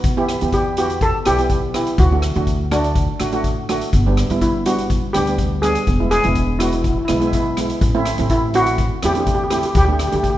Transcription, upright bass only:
0.04 E2
0.42 E2
1.27 B1
1.98 D2
2.36 D2
3.21 A1
3.93 G1
4.30 G1
5.15 D2
5.88 E1
6.25 E1
7.10 B1
7.81 A1
8.19 A1
9.04 E2
9.75 D2
10.13 D2

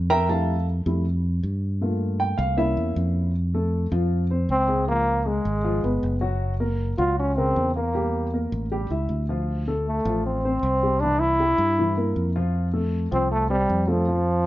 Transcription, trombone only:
4.51 C4
4.88 A#3
5.28 G#3
6.98 F4
7.19 C#4
7.37 C4
7.75 A#3
9.87 A3
10.26 C4
11.00 D4
11.19 E4
13.12 C4
13.31 A3
13.50 G3
13.89 F3

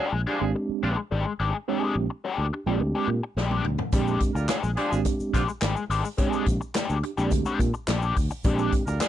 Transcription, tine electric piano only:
0.27 D4 G4
0.41 G#3 C4 D4 G4
1.68 G#3 C4 D4 G4
2.52 D4 G4
2.66 G#3 C4 D4 F4
2.73 G4
3.93 G#3 C4 D4 G4
4.78 D4 G4
4.91 G#3 C4 D4 F#4
4.98 G4
6.18 G#3 C4 D4 G4
7.03 D4 G4
7.18 G#3 C4 D4 G4
8.45 G#3 C4 D4 G4

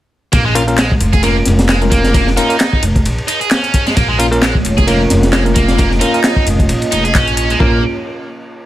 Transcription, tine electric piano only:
0.55 A#3 C#4 F4 A#4
0.68 A#3 C#4 F4 A#4
1.23 A#3 C#4 F4 A#4
1.82 A#3 C#4 F4 A#4
2.37 A#3 C#4 F4 A#4
2.49 A#3 C#4 F4 A#4
4.19 A#3 C#4 F4 A#4
4.32 A#3 C#4 F4 A#4
4.87 A#3 C#4 F4 A#4
5.46 A#3 C#4 F4 A#4
6.01 A#3 C#4 F4 A#4
6.14 A#3 C#4 F4 A#4
7.60 A#3 C#4 F4 A#4

